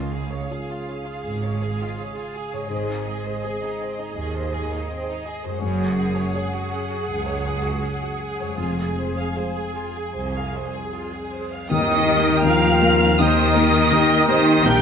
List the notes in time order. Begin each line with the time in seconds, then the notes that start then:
Already playing: C#2 C#3 G#3 F4 G#4 C#5 F5
0.13 G#4
0.32 C#5
0.50 G#3 F4 G#4 C#5
0.70 F4
0.89 C#4
1.06 F4
1.23 G#1 G#2 G#4
1.43 C#5
1.62 G#4
1.82 F4
2.00 C#4
2.16 F4
2.36 G#4
2.53 G#2 C#5
2.57 G#3
2.62 G#4
2.66 G#1 G#2 C5 D#5
2.71 C4
2.89 D#4
3.07 G#4
3.25 C5
3.43 G#3 G#4 C5
3.62 D#4
3.81 C4
3.98 D#4
4.16 D#2 G#4
4.36 C5
4.54 G#4
4.73 D#4
4.90 C4
5.09 D#4
5.26 G#4
5.44 F#2 C5
5.49 G#3
5.54 G#4
5.58 F#1 F#2 C#5
5.63 C#4 G#4 F#5
5.81 F#4
5.98 G#4
6.16 C#5
6.34 G#3 G#4 C#5
6.53 F#4
6.72 C#4
6.91 F#4
7.08 C#2 G#4
7.27 C#5
7.45 G#4
7.62 F#4
7.82 C#4
8.00 F#4
8.20 G#4
8.39 F2 C#5
8.45 G#3
8.49 G#4
8.54 F1 F2 F5 G#5
8.58 F4
8.77 G#4
8.98 C5
9.17 F5
9.35 G#3 G#4 C5 F5
9.55 G#4
9.74 F4
9.95 G#4
10.14 C2 C5
10.35 F5
10.54 C5
10.73 G#4
10.93 F4
11.13 G#4
11.32 C5
11.52 F5
11.69 D#2 D#3 D#4 A#4 D#5 G5 D#6, tam-tam
11.96 D#4
12.08 A#3 G4 A#4
12.44 D#2 D#3 F3 F4 G4 F5 F6
12.70 A#4
12.82 A#3 G4 A#4
12.95 A#3
13.18 D#2 D#3 D#4 A#4 C5 D#5 G5 D#6
13.44 D#4
13.56 A#3 G4 A#4
13.68 A#3
13.92 D#2 D#3 G4 D#5
14.17 A#4
14.27 D#3 A#3 D#4 G4 A#4 C5 D#5 D#6
14.41 A#3
14.65 A#1 A#2 G3 D4 G4 A#4 G5 A#5 G6